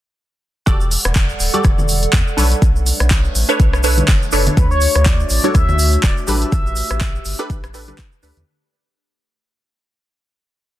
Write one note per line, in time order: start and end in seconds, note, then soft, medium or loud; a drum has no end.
0.66 0.97 E1 loud
0.66 2.60 G3 medium
0.66 1.40 F#4 loud
0.66 1.40 G4 medium
0.66 2.60 A4 medium
0.66 1.40 A4 medium
0.66 2.60 D5 medium
0.66 1.41 D5 loud
0.66 2.60 F#5 medium
0.66 kick loud
0.66 closed hi-hat medium
0.66 shaker soft
0.81 shaker soft
0.91 open hi-hat loud
0.91 shaker medium
1.05 1.33 E1 medium
1.05 cross-stick medium
1.05 closed hi-hat medium
1.05 shaker soft
1.15 kick loud
1.15 clap loud
1.15 closed hi-hat medium
1.15 shaker medium
1.29 shaker soft
1.40 1.49 D1 medium
1.40 open hi-hat loud
1.40 shaker medium
1.54 1.66 F#4 medium
1.54 1.66 G4 medium
1.54 1.67 A4 medium
1.54 1.67 D5 medium
1.54 closed hi-hat medium
1.54 high conga medium
1.54 shaker soft
1.64 2.07 E1 medium
1.64 kick loud
1.64 cross-stick medium
1.64 closed hi-hat medium
1.64 shaker medium
1.78 low conga medium
1.78 shaker soft
1.89 open hi-hat loud
1.89 shaker medium
2.03 closed hi-hat medium
2.03 shaker soft
2.13 2.22 E2 medium
2.13 kick loud
2.13 clap loud
2.13 closed hi-hat medium
2.13 shaker soft
2.27 shaker soft
2.37 2.54 B1 loud
2.37 3.45 D4 medium
2.37 3.46 A4 medium
2.37 3.46 B4 medium
2.37 3.46 C#5 medium
2.37 open hi-hat medium
2.37 high conga medium
2.37 shaker medium
2.52 closed hi-hat medium
2.52 shaker soft
2.62 2.92 B1 loud
2.62 4.55 A3 medium
2.62 8.43 D4 medium
2.62 4.55 B4 medium
2.62 6.24 C#5 loud
2.62 kick loud
2.62 closed hi-hat medium
2.62 shaker medium
2.76 shaker soft
2.86 open hi-hat loud
2.86 shaker medium
3.00 3.29 B1 medium
3.00 cross-stick medium
3.00 closed hi-hat soft
3.00 shaker soft
3.11 kick loud
3.11 clap loud
3.11 closed hi-hat medium
3.11 shaker medium
3.24 shaker soft
3.35 3.44 A1 medium
3.35 open hi-hat loud
3.35 shaker loud
3.49 3.81 D4 loud
3.49 3.81 A4 medium
3.49 3.82 B4 medium
3.49 3.82 C#5 loud
3.49 closed hi-hat medium
3.49 shaker soft
3.60 4.02 B1 medium
3.60 kick loud
3.60 closed hi-hat medium
3.60 shaker soft
3.73 cross-stick medium
3.73 shaker soft
3.84 4.30 D4 medium
3.84 4.30 A4 medium
3.84 4.30 B4 medium
3.84 4.31 C#5 loud
3.84 open hi-hat loud
3.84 shaker loud
3.97 closed hi-hat medium
3.97 high conga medium
3.97 low conga medium
3.97 shaker soft
4.08 4.17 F#1 medium
4.08 kick loud
4.08 clap loud
4.08 closed hi-hat medium
4.08 shaker soft
4.22 shaker soft
4.32 4.49 F#1 loud
4.32 4.55 D4 medium
4.32 4.55 A4 medium
4.32 4.55 B4 medium
4.32 4.56 C#5 loud
4.32 open hi-hat medium
4.32 shaker medium
4.47 closed hi-hat medium
4.47 low conga loud
4.47 shaker soft
4.57 4.87 D2 loud
4.57 8.44 A3 medium
4.57 6.26 F#4 medium
4.57 4.70 B4 loud
4.57 kick loud
4.57 closed hi-hat medium
4.57 shaker medium
4.71 5.08 C#5 loud
4.71 shaker soft
4.81 open hi-hat loud
4.81 shaker medium
4.95 5.24 D2 medium
4.95 cross-stick medium
4.95 closed hi-hat medium
4.95 shaker soft
5.06 5.30 D5 loud
5.06 kick loud
5.06 clap loud
5.06 closed hi-hat medium
5.06 shaker medium
5.20 shaker soft
5.30 5.39 A1 medium
5.30 5.53 D5 loud
5.30 open hi-hat loud
5.30 shaker medium
5.43 5.57 D4 medium
5.43 5.57 F#4 medium
5.43 5.57 A4 medium
5.43 5.57 C#5 medium
5.43 closed hi-hat medium
5.43 high conga medium
5.43 shaker soft
5.55 5.97 D2 medium
5.55 6.00 E5 loud
5.55 kick loud
5.55 cross-stick medium
5.55 closed hi-hat medium
5.55 shaker medium
5.69 low conga loud
5.69 shaker soft
5.79 open hi-hat loud
5.79 shaker loud
5.93 closed hi-hat medium
5.93 shaker soft
6.03 6.12 D1 medium
6.03 6.15 D5 loud
6.03 kick loud
6.03 clap loud
6.03 closed hi-hat medium
6.03 shaker medium
6.17 shaker soft
6.27 6.44 A1 loud
6.27 7.36 D4 medium
6.27 7.36 G4 medium
6.27 8.45 G4 medium
6.27 7.36 A4 medium
6.27 8.45 B4 medium
6.27 7.36 B4 medium
6.27 7.95 E5 loud
6.27 open hi-hat loud
6.27 high conga medium
6.27 shaker loud
6.42 closed hi-hat medium
6.42 shaker soft
6.52 6.82 A1 loud
6.52 kick loud
6.52 closed hi-hat medium
6.52 shaker medium
6.66 shaker soft
6.76 open hi-hat loud
6.76 shaker medium
6.91 7.19 A1 medium
6.91 cross-stick medium
6.91 closed hi-hat soft
6.91 shaker soft
7.01 kick loud
7.01 clap loud
7.01 closed hi-hat medium
7.01 shaker medium
7.15 shaker soft
7.25 7.34 G1 medium
7.25 open hi-hat loud
7.25 shaker loud
7.39 7.72 D4 loud
7.39 7.72 G4 medium
7.39 7.72 A4 medium
7.39 7.72 B4 loud
7.39 closed hi-hat medium
7.39 shaker soft
7.50 7.92 A1 medium
7.50 kick loud
7.50 closed hi-hat medium
7.50 shaker medium
7.64 cross-stick medium
7.64 closed hi-hat soft
7.64 shaker soft
7.74 7.85 D4 medium
7.74 7.85 G4 medium
7.74 7.85 A4 medium
7.74 7.85 B4 medium
7.74 open hi-hat loud
7.74 shaker medium
7.88 8.20 D4 medium
7.88 8.20 G4 medium
7.88 8.21 A4 medium
7.88 8.21 B4 medium
7.88 closed hi-hat medium
7.88 high conga medium
7.88 low conga medium
7.88 shaker soft
7.98 kick loud
7.98 clap loud
7.98 closed hi-hat medium
7.98 shaker medium
8.12 shaker soft
8.23 8.31 D2 loud
8.23 8.46 D4 medium
8.23 8.46 G4 medium
8.23 8.46 A4 medium
8.23 8.46 B4 medium
8.23 open hi-hat loud
8.23 shaker loud
8.37 8.43 E2 loud
8.37 closed hi-hat soft
8.37 low conga medium
8.37 shaker soft